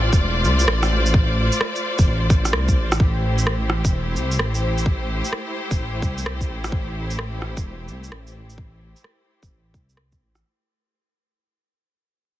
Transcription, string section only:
0, 0, Header, 1, 2, 480
1, 0, Start_track
1, 0, Key_signature, 0, "minor"
1, 0, Tempo, 465116
1, 1172, Time_signature, 4, 2, 24, 8
1, 12789, End_track
2, 0, Start_track
2, 0, Title_t, "String section"
2, 0, Program_c, 0, 48
2, 0, Note_on_c, 0, 57, 82
2, 0, Note_on_c, 0, 65, 78
2, 0, Note_on_c, 0, 72, 94
2, 0, Note_on_c, 0, 74, 91
2, 3053, Note_off_c, 0, 65, 0
2, 3053, Note_off_c, 0, 72, 0
2, 3054, Note_off_c, 0, 57, 0
2, 3054, Note_off_c, 0, 74, 0
2, 3097, Note_on_c, 0, 67, 73
2, 3100, Note_on_c, 0, 64, 72
2, 3104, Note_on_c, 0, 57, 79
2, 3106, Note_on_c, 0, 72, 88
2, 10733, Note_off_c, 0, 67, 0
2, 10735, Note_off_c, 0, 64, 0
2, 10737, Note_off_c, 0, 57, 0
2, 10738, Note_off_c, 0, 72, 0
2, 12789, End_track
0, 0, End_of_file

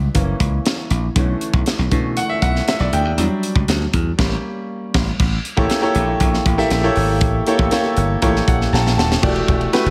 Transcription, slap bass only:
0, 0, Header, 1, 2, 480
1, 0, Start_track
1, 0, Tempo, 504626
1, 1104, Time_signature, 4, 2, 24, 8
1, 9419, End_track
2, 0, Start_track
2, 0, Title_t, "Slap bass"
2, 0, Program_c, 0, 36
2, 140, Note_on_c, 0, 30, 105
2, 311, Note_off_c, 0, 30, 0
2, 382, Note_on_c, 0, 37, 83
2, 552, Note_off_c, 0, 37, 0
2, 860, Note_on_c, 0, 34, 84
2, 1031, Note_off_c, 0, 34, 0
2, 1102, Note_on_c, 0, 35, 106
2, 1272, Note_off_c, 0, 35, 0
2, 1461, Note_on_c, 0, 35, 90
2, 1547, Note_off_c, 0, 35, 0
2, 1699, Note_on_c, 0, 35, 96
2, 1786, Note_off_c, 0, 35, 0
2, 1823, Note_on_c, 0, 47, 99
2, 2077, Note_off_c, 0, 47, 0
2, 2301, Note_on_c, 0, 35, 90
2, 2471, Note_off_c, 0, 35, 0
2, 2663, Note_on_c, 0, 35, 83
2, 2748, Note_off_c, 0, 35, 0
2, 2784, Note_on_c, 0, 38, 91
2, 2902, Note_off_c, 0, 38, 0
2, 2902, Note_on_c, 0, 39, 80
2, 2987, Note_off_c, 0, 39, 0
2, 3022, Note_on_c, 0, 40, 110
2, 3107, Note_off_c, 0, 40, 0
2, 3383, Note_on_c, 0, 37, 79
2, 3468, Note_off_c, 0, 37, 0
2, 3502, Note_on_c, 0, 38, 88
2, 3671, Note_off_c, 0, 38, 0
2, 3744, Note_on_c, 0, 40, 91
2, 3913, Note_off_c, 0, 40, 0
2, 3981, Note_on_c, 0, 33, 109
2, 4145, Note_off_c, 0, 33, 0
2, 4701, Note_on_c, 0, 33, 110
2, 4865, Note_off_c, 0, 33, 0
2, 4943, Note_on_c, 0, 33, 102
2, 5112, Note_off_c, 0, 33, 0
2, 5302, Note_on_c, 0, 33, 70
2, 5387, Note_off_c, 0, 33, 0
2, 5661, Note_on_c, 0, 34, 94
2, 5831, Note_off_c, 0, 34, 0
2, 5901, Note_on_c, 0, 34, 107
2, 6071, Note_off_c, 0, 34, 0
2, 6141, Note_on_c, 0, 33, 90
2, 6311, Note_off_c, 0, 33, 0
2, 6379, Note_on_c, 0, 34, 101
2, 6549, Note_off_c, 0, 34, 0
2, 6623, Note_on_c, 0, 32, 91
2, 6862, Note_off_c, 0, 32, 0
2, 6862, Note_on_c, 0, 33, 107
2, 7031, Note_off_c, 0, 33, 0
2, 7218, Note_on_c, 0, 33, 89
2, 7304, Note_off_c, 0, 33, 0
2, 7580, Note_on_c, 0, 31, 93
2, 7750, Note_off_c, 0, 31, 0
2, 7819, Note_on_c, 0, 33, 95
2, 7990, Note_off_c, 0, 33, 0
2, 8062, Note_on_c, 0, 34, 89
2, 8231, Note_off_c, 0, 34, 0
2, 8299, Note_on_c, 0, 34, 108
2, 8539, Note_off_c, 0, 34, 0
2, 8539, Note_on_c, 0, 27, 87
2, 8709, Note_off_c, 0, 27, 0
2, 8780, Note_on_c, 0, 28, 104
2, 8950, Note_off_c, 0, 28, 0
2, 9022, Note_on_c, 0, 28, 87
2, 9191, Note_off_c, 0, 28, 0
2, 9376, Note_on_c, 0, 30, 92
2, 9419, Note_off_c, 0, 30, 0
2, 9419, End_track
0, 0, End_of_file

